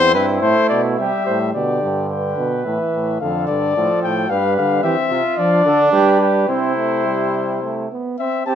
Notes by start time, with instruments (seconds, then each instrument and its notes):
Already playing: euphonium E2, trombone C4, flugelhorn E4, trumpet C5
0.14 euphonium G2, trumpet B4
0.41 euphonium A2, trombone A3, trumpet C5
0.69 euphonium B2, trumpet D5
0.97 euphonium C3, trombone G3, flugelhorn G4, trumpet E5
1.26 euphonium A2, flugelhorn C5
1.53 euphonium B2, trombone D3, flugelhorn G4, trumpet D5
1.83 euphonium G2
2.10 flugelhorn B4, trumpet G5
2.38 euphonium B2
2.65 euphonium A2, trombone E3, trumpet E5
2.94 euphonium A2
3.20 euphonium F2, trombone D3, flugelhorn A4, trumpet F5
3.47 euphonium G2, trumpet D5
3.75 euphonium A2, trombone F3, flugelhorn A4
4.03 euphonium A2, trumpet G5
4.29 euphonium G2, trombone G3, flugelhorn B4, trumpet F5
4.57 euphonium D3, trumpet F5
4.83 euphonium E3, trombone C4, flugelhorn G4, trumpet E5
5.11 euphonium C3, flugelhorn F4
5.37 euphonium F3, trombone D4, trumpet D5
5.65 euphonium D3, flugelhorn A4
5.92 euphonium G3, flugelhorn G4, trumpet B4
6.21 flugelhorn G4
6.48 euphonium C3, trombone C4, flugelhorn E4, trumpet C5
6.76 trombone A3
7.05 trombone G3
7.63 trombone A3
7.92 trombone B3
8.19 trombone C4, trumpet E5
8.46 trombone C4, flugelhorn G4, trumpet A5